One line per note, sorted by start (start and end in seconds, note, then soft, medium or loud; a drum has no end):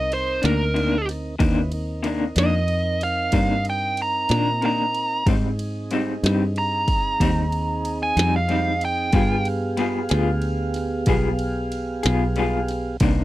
0.00 0.40 C2 medium
0.00 1.36 C4 medium
0.00 1.35 D#4 medium
0.00 1.36 A#4 medium
0.00 0.11 D#5 medium
0.00 1.36 D#5 medium
0.12 0.43 C5 loud
0.12 ride medium
0.42 1.37 D2 loud
0.42 0.63 D#3 soft
0.42 0.63 A#3 soft
0.42 0.62 D4 soft
0.42 1.07 A#4 loud
0.42 snare loud
0.42 ride medium
0.74 0.94 C3 medium
0.74 0.95 D#3 medium
0.74 0.95 A#3 medium
0.74 0.95 D4 medium
0.74 ride medium
1.09 snare soft
1.09 ride medium
1.39 2.34 D#2 medium
1.39 1.59 C3 medium
1.39 1.59 D#3 loud
1.39 1.59 A#3 medium
1.39 1.72 C#4 medium
1.39 1.60 D4 loud
1.39 1.72 E4 medium
1.39 1.72 B4 medium
1.39 1.72 D#5 medium
1.39 kick loud
1.39 ride medium
1.72 5.24 C4 medium
1.72 5.24 D#4 medium
1.72 5.24 A#4 medium
1.72 5.24 D#5 medium
1.72 ride medium
2.03 2.23 C3 medium
2.03 2.23 D#3 medium
2.03 2.24 A#3 medium
2.03 2.24 D4 medium
2.03 ride medium
2.36 3.30 F2 medium
2.36 2.57 D#3 soft
2.36 2.56 A#3 soft
2.36 2.55 D4 medium
2.36 3.00 D#5 loud
2.36 snare loud
2.36 ride medium
2.68 ride medium
3.01 3.65 F5 medium
3.01 snare soft
3.01 ride medium
3.32 4.27 G2 medium
3.32 3.52 C3 medium
3.32 3.53 D#3 medium
3.32 3.53 A#3 medium
3.32 3.53 D4 medium
3.32 kick medium
3.32 ride medium
3.65 ride medium
3.70 3.99 G5 medium
3.97 ride medium
4.02 4.62 A#5 medium
4.29 5.24 A#2 medium
4.29 4.50 D#3 soft
4.29 4.50 A#3 soft
4.29 4.49 D4 medium
4.29 snare loud
4.29 ride medium
4.62 4.81 C3 medium
4.62 4.82 D#3 medium
4.62 4.82 A#3 medium
4.62 4.83 D4 medium
4.62 5.26 A#5 medium
4.62 ride medium
4.94 ride soft
5.26 5.46 G#2 medium
5.26 6.21 G#2 medium
5.26 5.46 G3 medium
5.26 9.11 C4 medium
5.26 5.47 C4 medium
5.26 9.11 D#4 medium
5.26 5.47 D#4 medium
5.26 9.11 G#4 medium
5.26 9.11 D#5 medium
5.26 kick loud
5.26 ride medium
5.59 ride medium
5.91 6.10 G#2 medium
5.91 6.11 G3 medium
5.91 6.11 C4 medium
5.91 6.12 D#4 medium
5.91 ride medium
6.23 7.17 G2 medium
6.23 6.45 G3 medium
6.23 6.44 C4 soft
6.23 6.43 D#4 medium
6.23 snare loud
6.23 ride medium
6.56 7.98 A#5 medium
6.56 ride medium
6.88 kick medium
6.88 ride medium
7.20 8.14 D#2 medium
7.20 7.40 G#2 medium
7.20 7.40 G3 medium
7.20 7.40 C4 medium
7.20 7.41 D#4 medium
7.20 kick medium
7.20 ride loud
7.52 ride medium
7.85 ride medium
8.03 8.33 G#5 loud
8.17 9.11 F2 medium
8.17 8.38 G3 soft
8.17 8.37 C4 soft
8.17 8.36 D#4 soft
8.17 snare loud
8.17 ride medium
8.36 8.82 F5 medium
8.48 8.68 G#2 medium
8.48 8.69 G3 medium
8.48 8.69 C4 medium
8.48 8.69 D#4 medium
8.48 ride medium
8.81 9.46 G5 loud
8.81 ride medium
9.11 10.08 G2 medium
9.11 9.33 G3 medium
9.11 12.97 B3 medium
9.11 9.33 B3 medium
9.11 9.34 F4 loud
9.11 12.97 G4 medium
9.11 12.97 G#4 medium
9.11 9.34 G#4 medium
9.11 12.97 F5 medium
9.11 kick loud
9.11 ride medium
9.45 ride medium
9.77 9.97 G3 medium
9.77 9.98 B3 medium
9.77 9.98 F4 medium
9.77 9.99 G#4 medium
9.77 ride medium
10.09 11.05 D2 loud
10.09 10.31 B3 soft
10.09 10.31 F4 medium
10.09 10.30 G#4 medium
10.09 snare loud
10.09 ride medium
10.42 ride medium
10.74 snare soft
10.74 ride medium
11.06 12.02 B1 medium
11.06 11.27 G3 medium
11.06 11.28 B3 medium
11.06 11.28 F4 medium
11.06 11.28 G#4 medium
11.06 kick loud
11.06 ride medium
11.39 ride medium
11.72 ride medium
12.03 12.99 B1 medium
12.03 12.25 B3 soft
12.03 12.24 F4 medium
12.03 12.23 G#4 medium
12.03 snare loud
12.03 ride medium
12.36 12.56 G3 medium
12.36 12.57 B3 medium
12.36 12.57 F4 medium
12.36 12.58 G#4 medium
12.36 ride medium
12.68 snare soft
12.68 ride medium
13.00 13.24 C2 medium
13.00 13.20 C3 medium
13.00 13.21 D#3 medium
13.00 13.21 A#3 loud
13.00 13.24 C#4 medium
13.00 13.21 D4 loud
13.00 13.24 E4 medium
13.00 13.24 B4 medium
13.00 13.24 D#5 medium
13.00 kick loud
13.00 ride medium